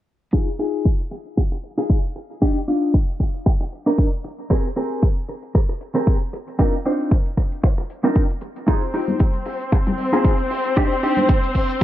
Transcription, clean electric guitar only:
0.33 0.47 D#4 loud
0.33 0.47 F4 medium
0.33 0.47 G#4 loud
0.59 0.85 D#4 medium
0.59 0.85 F4 medium
0.59 0.85 G#4 medium
1.11 muted clean electric guitar stroke soft
1.37 muted clean electric guitar stroke medium
1.52 muted clean electric guitar stroke soft
1.78 1.97 D#4 medium
1.78 1.97 F4 medium
1.78 1.97 G#4 medium
2.16 muted clean electric guitar stroke soft
2.42 2.56 D4 loud
2.42 2.56 D#4 medium
2.42 2.56 G4 loud
2.68 2.94 D4 medium
2.68 2.94 D#4 medium
2.68 2.94 F4 medium
3.20 muted clean electric guitar stroke soft
3.46 muted clean electric guitar stroke medium
3.61 muted clean electric guitar stroke soft
3.86 4.06 D4 medium
3.86 4.06 D#4 medium
3.86 4.06 A#4 medium
4.24 muted clean electric guitar stroke soft
4.50 4.65 C4 loud
4.50 4.65 G4 medium
4.50 4.65 G#4 medium
4.50 4.65 A#4 loud
4.76 5.03 C4 medium
4.76 5.03 G4 medium
4.76 5.03 G#4 medium
4.76 5.03 A#4 medium
5.29 muted clean electric guitar stroke soft
5.55 muted clean electric guitar stroke medium
5.69 muted clean electric guitar stroke soft
5.95 6.14 C4 medium
5.95 6.14 G4 medium
5.95 6.14 G#4 medium
5.95 6.14 A#4 medium
6.33 muted clean electric guitar stroke soft
6.59 6.74 C4 loud
6.59 6.74 D4 medium
6.59 6.74 D#4 medium
6.59 6.74 F4 medium
6.59 6.74 A#4 loud
6.85 7.12 C4 medium
6.85 7.12 D4 medium
6.85 7.12 D#4 medium
6.85 7.12 F4 medium
6.85 7.12 C5 medium
7.37 muted clean electric guitar stroke soft
7.63 muted clean electric guitar stroke medium
7.78 muted clean electric guitar stroke soft
8.04 8.23 C4 medium
8.04 8.23 D4 medium
8.04 8.23 D#4 medium
8.04 8.23 F4 medium
8.04 8.23 A#4 medium
8.42 muted clean electric guitar stroke soft
8.68 8.82 D#4 medium
8.68 8.82 F4 medium
8.68 8.82 G#4 loud
8.94 9.20 D#4 medium
8.94 9.20 F4 medium
8.94 9.20 G4 medium
9.46 muted clean electric guitar stroke soft
9.72 muted clean electric guitar stroke medium
9.87 muted clean electric guitar stroke soft
10.13 10.32 D#4 medium
10.13 10.32 F4 medium
10.13 10.32 G#4 medium
10.51 muted clean electric guitar stroke soft
10.77 10.91 D4 loud
10.77 10.91 D#4 medium
10.77 10.91 G4 loud
11.03 11.29 D4 medium
11.03 11.29 D#4 medium
11.03 11.29 G4 medium
11.55 muted clean electric guitar stroke soft

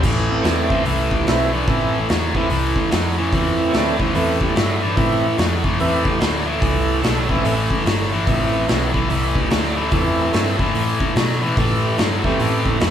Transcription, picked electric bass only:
0.04 0.44 A1 medium
0.45 0.85 E2 medium
0.86 1.26 C2 medium
1.27 1.67 B1 medium
1.68 2.08 A1 medium
2.10 2.50 E2 medium
2.51 2.75 C2 medium
2.76 muted picked electric bass stroke soft
2.93 3.32 F2 medium
3.33 3.73 E2 medium
3.74 4.14 D2 medium
4.16 4.55 E2 medium
4.57 4.97 G2 medium
4.97 5.37 A2 medium
5.39 5.79 F2 medium
5.80 6.20 E2 medium
6.22 6.61 D2 medium
6.62 7.02 C2 medium
7.04 7.44 B1 medium
7.45 7.69 A1 medium
7.86 8.26 G1 medium
8.27 8.67 A1 medium
8.69 9.09 B1 medium
9.11 9.50 C2 medium
9.52 9.91 D2 medium
9.92 10.32 E2 medium
10.34 10.74 G2 medium
10.76 10.99 A2 medium
11.16 11.56 B2 medium
11.57 11.97 A2 medium
11.99 12.39 G2 medium
12.41 12.80 A2 medium
12.82 12.90 F2 medium

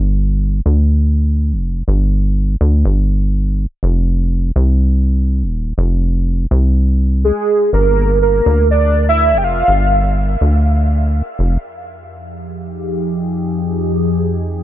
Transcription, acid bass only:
0.00 0.61 G1 loud
0.66 1.54 D2 loud
1.53 1.83 F1 medium
1.88 2.56 G1 loud
2.61 2.85 D2 loud
2.85 3.66 G1 medium
3.83 4.51 F1 loud
4.56 5.44 C2 loud
5.43 5.73 D#1 medium
5.78 6.46 F1 loud
6.51 7.32 C2 loud
7.73 8.42 G1 loud
8.46 9.35 D2 loud
9.33 9.64 F1 medium
9.68 10.37 G1 loud
10.41 11.22 D2 loud
11.39 11.58 F1 loud

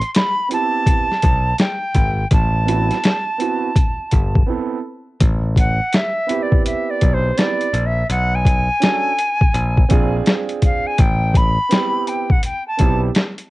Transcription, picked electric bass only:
1.23 1.52 B1 medium
1.95 2.24 G#1 loud
2.31 2.90 A1 loud
4.12 4.42 G1 medium
5.20 5.79 A1 loud
7.02 7.31 B1 medium
7.73 8.03 A#1 medium
8.10 8.68 B1 loud
9.54 9.83 A#1 loud
9.91 10.20 A#1 medium
10.99 11.57 A1 loud
12.80 13.09 B1 loud

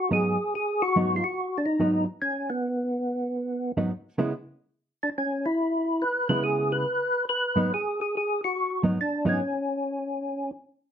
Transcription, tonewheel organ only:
0.13 0.54 G#4 medium
0.55 0.82 G#4 medium
0.82 1.15 F#4 loud
1.16 1.24 F4 medium
1.24 1.57 F#4 medium
1.58 1.66 D4 medium
1.66 2.04 D#4 loud
2.22 2.50 C#4 medium
2.50 3.72 B3 medium
5.03 5.10 D4 medium
5.18 5.46 C#4 medium
5.46 6.04 E4 medium
6.02 6.28 B4 loud
6.29 6.43 B4 medium
6.44 6.72 G#4 loud
6.72 7.25 B4 loud
7.29 7.73 B4 medium
7.74 8.00 G#4 medium
8.01 8.15 G#4 medium
8.17 8.41 G#4 medium
8.44 8.82 F#4 medium
9.01 9.25 D4 medium
9.29 10.51 C#4 medium

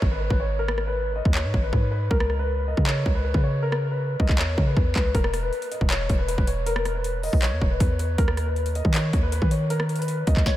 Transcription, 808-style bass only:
0.02 0.29 G#1 loud
0.30 1.22 G#1 loud
1.25 1.46 D#2 loud
1.44 1.53 G#2 loud
1.54 1.72 G#1 loud
1.73 2.09 G#2 loud
2.11 2.75 C#2 loud
2.77 3.05 C#3 loud
3.06 3.33 C#2 loud
3.34 4.16 C#3 loud
4.20 4.40 C#2 loud
4.39 4.57 E2 loud
4.58 4.76 C#3 loud
4.77 4.95 E2 loud
4.96 5.14 C#2 loud
5.15 5.51 E1 loud
5.81 6.08 E1 loud
6.10 6.37 E1 loud
6.38 7.29 E1 loud
7.33 7.53 B1 loud
7.52 7.61 E2 loud
7.61 7.80 E1 loud
7.80 8.17 E2 loud
8.18 8.82 D#2 loud
8.85 9.12 D#3 loud
9.13 9.41 D#2 loud
9.42 10.24 D#3 loud
10.27 10.36 D#2 loud
10.37 10.46 D#2 loud

